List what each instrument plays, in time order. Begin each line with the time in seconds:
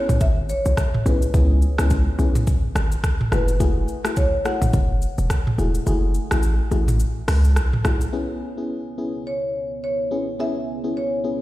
Already playing: fm electric piano B3 C#4 E4 G#4, marimba C#5
0.09 808-style bass B1, mid tom, shaker
0.21 808-style bass G#1, marimba E5, kick, shaker
0.49 marimba C#5, shaker
0.66 808-style bass B1, shaker
0.77 kick, cross-stick, shaker
0.94 mid tom
1.05 808-style bass B1, fm electric piano B3 C#4 E4 G#4, marimba B4, shaker
1.22 shaker
1.34 808-style bass C#2, fm electric piano B3 C#4 E4 G#4, kick, shaker
1.62 shaker
1.78 808-style bass C#2, fm electric piano B3 C#4 E4 G#4, cross-stick, shaker
1.90 kick, shaker
2.19 808-style bass B1, fm electric piano B3 C#4 E4 G#4, shaker
2.35 mid tom, shaker
2.47 kick, shaker
2.75 808-style bass G#1, cross-stick, shaker
2.92 shaker
3.04 kick, cross-stick, shaker
3.21 mid tom
3.32 808-style bass F#1, fm electric piano A3 E4 F#4 G#4, marimba B4, cross-stick, shaker
3.48 shaker
3.60 fm electric piano A3 E4 F#4 G#4, kick, shaker
3.88 shaker
4.05 fm electric piano A3 E4 F#4 G#4, cross-stick, shaker
4.16 marimba C#5, kick, shaker
4.45 fm electric piano A3 E4 F#4 G#4, marimba F#5, cross-stick, shaker
4.62 808-style bass A1, mid tom, shaker
4.73 808-style bass F#1, kick, shaker
5.02 shaker
5.18 808-style bass E1, shaker
5.30 kick, cross-stick, shaker
5.47 mid tom
5.58 808-style bass E1, fm electric piano A3 E4 F#4 G#4, shaker
5.75 shaker
5.86 808-style bass F#1, fm electric piano A3 E4 F#4 G#4, shaker
6.14 shaker
6.31 808-style bass A1, fm electric piano A3 E4 F#4 G#4, cross-stick, shaker
6.43 shaker
6.71 808-style bass A1, fm electric piano A3 E4 F#4 G#4, shaker
6.88 mid tom, shaker
7.00 shaker
7.28 808-style bass C#2, cross-stick, open hi-hat, shaker
7.44 shaker
7.56 808-style bass B1, cross-stick, shaker
7.73 mid tom
7.84 808-style bass B1, fm electric piano A3 E4 F#4 G#4, cross-stick, shaker
8.01 shaker
8.13 ambient pad C#3 B3 E4, fm electric piano B3 C#4 E4 G#4
8.57 fm electric piano B3 C#4 E4 G#4
8.98 fm electric piano B3 C#4 E4 G#4
9.27 marimba C#5
9.84 marimba C#5
10.11 fm electric piano B3 C#4 E4 G#4
10.39 fm electric piano B3 C#4 E4 G#4, marimba E5
10.84 fm electric piano B3 C#4 E4 G#4
10.97 marimba C#5
11.24 fm electric piano B3 C#4 E4 G#4